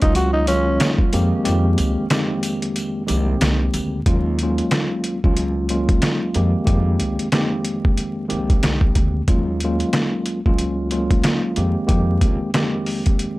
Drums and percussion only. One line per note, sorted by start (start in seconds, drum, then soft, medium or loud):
0.02 kick medium
0.02 closed hi-hat medium
0.15 closed hi-hat medium
0.15 sleigh bells medium
0.47 closed hi-hat medium
0.47 sleigh bells medium
0.80 snare loud
0.80 closed hi-hat loud
0.80 sleigh bells medium
0.98 kick medium
1.12 closed hi-hat medium
1.12 sleigh bells medium
1.45 closed hi-hat medium
1.45 sleigh bells soft
1.78 closed hi-hat medium
1.78 sleigh bells medium
2.10 snare loud
2.10 closed hi-hat medium
2.10 sleigh bells medium
2.43 closed hi-hat medium
2.43 sleigh bells medium
2.62 closed hi-hat medium
2.76 closed hi-hat medium
2.76 sleigh bells soft
3.08 closed hi-hat medium
3.08 sleigh bells medium
3.41 snare loud
3.41 closed hi-hat loud
3.41 sleigh bells soft
3.73 closed hi-hat medium
3.73 sleigh bells medium
4.06 kick loud
4.06 closed hi-hat medium
4.39 closed hi-hat medium
4.58 closed hi-hat medium
4.71 snare loud
4.71 closed hi-hat medium
5.04 closed hi-hat medium
5.24 kick medium
5.37 closed hi-hat medium
5.69 closed hi-hat medium
5.89 kick loud
5.89 closed hi-hat soft
6.02 snare loud
6.02 snare medium
6.02 closed hi-hat loud
6.34 closed hi-hat medium
6.67 kick loud
6.67 closed hi-hat medium
7.00 closed hi-hat medium
7.19 closed hi-hat medium
7.32 snare loud
7.32 snare medium
7.32 closed hi-hat medium
7.65 closed hi-hat medium
7.85 kick loud
7.98 closed hi-hat medium
8.30 closed hi-hat medium
8.50 kick loud
8.50 closed hi-hat soft
8.63 snare loud
8.63 snare medium
8.63 closed hi-hat loud
8.81 kick medium
8.95 kick medium
8.95 closed hi-hat medium
9.28 kick loud
9.28 closed hi-hat medium
9.60 closed hi-hat medium
9.80 closed hi-hat medium
9.93 snare loud
9.93 closed hi-hat medium
10.26 closed hi-hat medium
10.46 kick medium
10.58 closed hi-hat medium
10.91 closed hi-hat medium
11.11 kick loud
11.11 closed hi-hat soft
11.24 snare loud
11.24 closed hi-hat loud
11.56 closed hi-hat medium
11.89 kick loud
11.89 closed hi-hat medium
12.21 kick medium
12.21 closed hi-hat medium
12.54 snare loud
12.54 closed hi-hat medium
12.86 open hi-hat medium
13.06 kick loud
13.06 closed hi-hat medium
13.19 closed hi-hat medium